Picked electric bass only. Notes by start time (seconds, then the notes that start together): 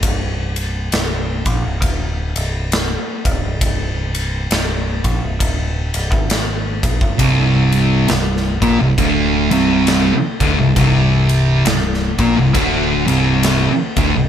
0.03 C1
0.93 C1
1.46 A#1
1.64 C1
1.82 D1
2.36 C1
3.00 muted picked electric bass stroke
3.25 D1
3.44 C1
3.61 C1
4.51 C1
5.04 A#1
5.23 C1
5.41 D1
5.94 C1
6.12 G#1
6.83 A#1
7.01 G1
7.19 C1
8.09 C1
8.62 A#1
8.80 C1
8.98 D1
9.51 C1
10.14 muted picked electric bass stroke
10.41 D1
10.58 C1
10.76 C1
11.65 C1
12.19 A#1
12.37 C1
12.55 D1
13.08 C1
13.71 muted picked electric bass stroke
13.97 D1
14.15 C1